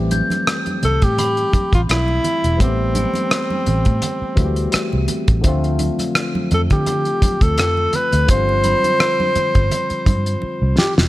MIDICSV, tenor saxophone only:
0, 0, Header, 1, 2, 480
1, 0, Start_track
1, 0, Key_signature, 0, "minor"
1, 0, Tempo, 710900
1, 1756, Time_signature, 4, 2, 24, 8
1, 7485, End_track
2, 0, Start_track
2, 0, Title_t, "Tenor saxophone"
2, 0, Program_c, 0, 66
2, 571, Note_on_c, 0, 69, 92
2, 700, Note_on_c, 0, 67, 101
2, 710, Note_off_c, 0, 69, 0
2, 1173, Note_off_c, 0, 67, 0
2, 1177, Note_on_c, 0, 65, 75
2, 1224, Note_off_c, 0, 65, 0
2, 1283, Note_on_c, 0, 64, 89
2, 1760, Note_on_c, 0, 60, 82
2, 1770, Note_off_c, 0, 64, 0
2, 3437, Note_off_c, 0, 60, 0
2, 4415, Note_on_c, 0, 69, 76
2, 4468, Note_off_c, 0, 69, 0
2, 4538, Note_on_c, 0, 67, 82
2, 5013, Note_on_c, 0, 69, 87
2, 5023, Note_off_c, 0, 67, 0
2, 5369, Note_on_c, 0, 71, 90
2, 5379, Note_off_c, 0, 69, 0
2, 5602, Note_off_c, 0, 71, 0
2, 5607, Note_on_c, 0, 72, 108
2, 7254, Note_off_c, 0, 72, 0
2, 7281, Note_on_c, 0, 67, 85
2, 7388, Note_off_c, 0, 67, 0
2, 7485, End_track
0, 0, End_of_file